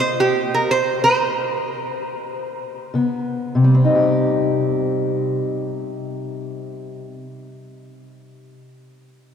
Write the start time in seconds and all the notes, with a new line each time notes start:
0.00 C5
0.20 G4
0.54 A#4
0.71 C5
1.04 C5
2.94 C#3 B3
3.55 C3
3.64 G3
3.75 C4
3.85 D#4
3.95 G4